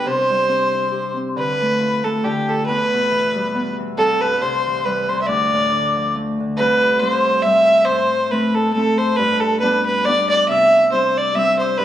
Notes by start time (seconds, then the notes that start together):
Already playing: B2 G3 A3 B3 D4
0.06 C3 C5 C6
0.30 G3
0.49 C4
0.73 E4
0.91 G4
1.16 C4
1.28 C6
1.36 D3 B4 B5
1.62 A3
1.80 F4 B5
2.04 A3 A4 A5
2.24 D3 G4 G5
2.49 F4 A4
2.66 E2 B4 B5
2.94 B2
3.11 E3
3.35 G3
3.55 B3
3.78 E3
3.97 C2 A4 A5
4.21 G2 B4
4.41 C3 C5 C6
4.66 E3
4.84 G3 B4 B5
5.09 C3 C5 C6
5.21 E5
5.26 D2 D5 D6
5.53 A2
5.72 D3
5.96 F3
6.15 A3
6.40 D3
6.57 C2 B4 B5
6.81 B5
6.98 G3 C4 B4 C6
7.03 E4
7.09 C5
7.43 G3 C4 E4 E5 E6
7.85 C5 C6
7.89 A2
8.31 A3 C4 E4 B4 B5
8.55 A4 A5
8.73 A3 C4 A4 A5
8.79 E4
8.98 C5
9.16 G2 B4 B5
9.40 A4 A5
9.60 G3 B3 D4 B4 B5
9.85 B4 B5
10.05 G3 B3 D4 D5 D6
10.29 D5 D6
10.48 C3 E5 E6
10.92 G3 C4 E4 C5
10.96 C6
11.17 D5 D6
11.35 G3 C4 E4 E5 E6
11.59 C5 C6
11.78 G2 B4 B5